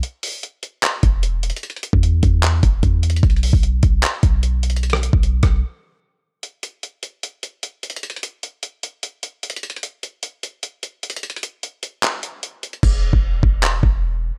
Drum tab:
CC |------------------------------------------------|------------------------------------------------|------------------------------------------------|------------------------------------------------|
HH |x-----o-----x-----x-----x-----x-----x-----x-x-x-|x-x-x-x-----x-----x-----x-----x-----x-----x-x-x-|x-x-x-o-----x-----x-----x-----x-----x-----x-x-x-|x-x-x-x-----x-----x-----------------------------|
CP |------------------------x-----------------------|------------------------x-----------------------|------------------------x-----------------------|------------------------------------------------|
SD |------------------------------------------------|------------------------------------------------|------------------------------------------------|---r--------------r-----------------------------|
BD |------------------------------o-----------------|---------o--------o-----------o-----o-----------|o--------o--------o-----------o-----------------|---------o--------o-----------------------------|

CC |------------------------------------------------|------------------------------------------------|------------------------------------------------|------------------------------------------------|
HH |x-----x-----x-----x-----x-----x-----x-----x-x-x-|x-x-x-x-----x-----x-----x-----x-----x-----x-x-x-|x-x-x-x-----x-----x-----x-----x-----x-----x-x-x-|x-x-x-x-----x-----x-----x-----x-----x-----x--x--|
CP |------------------------------------------------|------------------------------------------------|------------------------------------------------|------------------------x-----------------------|
SD |------------------------------------------------|------------------------------------------------|------------------------------------------------|------------------------------------------------|
BD |------------------------------------------------|------------------------------------------------|------------------------------------------------|------------------------------------------------|

CC |x-----------------------------------------------|
HH |------------------------------------------------|
CP |------------------------x-----------------------|
SD |------------------------------------------------|
BD |o--------o--------o-----------o-----------------|